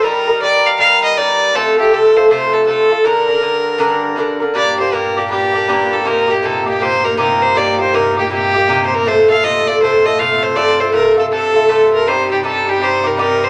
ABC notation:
X:1
M:4/4
L:1/16
Q:"Swing" 1/4=160
K:Gm
V:1 name="Fiddle"
B4 d2 f2 f2 e2 d4 | A2 G2 A2 c2 c2 A2 A4 | B12 z4 | d2 c2 B2 G2 G6 A2 |
B2 G2 A2 G2 c2 B2 B2 c2 | d2 c2 B2 G2 G4- G3/2 c/2 B2 | c2 f2 e2 d2 c2 e2 f2 c2 | d2 c2 B2 A2 A6 B2 |
c2 G2 A2 G2 c2 B2 B2 c2 |]
V:2 name="Bouzouki"
[G,,G,EB]2 [G,EB]2 [G,,G,EB]4 [G,,G,EB]4 [G,,G,EB]4 | [C,A,FA]2 [A,FA]2 [C,A,FA]2 [A,FA]2 [C,A,FA]4 [C,A,FA]2 [A,FA]2 | [G,,D,DB]2 [D,DB]2 [G,,D,DB]4 [G,,D,DB]4 [G,,D,DB]2 [D,DB]2 | [G,,B,DG]2 [B,DG]2 [G,,B,DG]2 [B,DG]2 [G,,B,DG]2 [B,DG]2 [G,,B,DG]4 |
[C,B,EG]2 [B,EG]2 [C,B,EG]2 [B,EG]2 [C,B,EG]2 [B,EG]2 [C,B,EG]4 | [C,B,EG]2 [B,EG]2 [C,B,EG]2 [B,EG]2 [C,B,EG]2 [B,EG]2 [C,B,EG]4 | [C,A,FA]2 [A,FA]2 [C,A,FA]2 [A,FA]2 [C,A,FA]2 [A,FA]2 [C,A,FA]4 | [C,A,FA]2 [A,FA]2 [C,A,FA]2 [A,FA]2 [C,A,FA]2 [A,FA]2 [C,A,FA]4 |
[C,G,EG]2 [G,EG]2 [C,G,EG]2 [G,EG]2 [C,G,EG]2 [G,EG]2 [C,G,EG]4 |]
V:3 name="String section" clef=bass
z16 | z16 | z16 | [G,,B,,]16- |
[G,,B,,]16- | [G,,B,,]16- | [G,,B,,]16 | [G,,C,]16- |
[G,,C,]16 |]